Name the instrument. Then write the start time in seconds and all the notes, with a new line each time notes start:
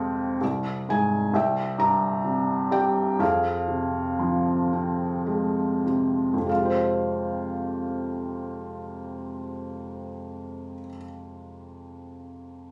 felt piano
Already playing: F2 C3 G#3 C4
0.41 C2
0.89 G#2 G#5
1.33 C2 E5 G5
1.78 G2 A#5
2.24 C3
2.71 G3 G5
3.19 F2 G#4 F5
3.68 C3
4.19 F3
4.73 C4
5.27 G#3
5.86 C3
6.34 F2
6.39 C3
6.46 G#3 F5
6.52 F4
6.59 G4
6.65 C5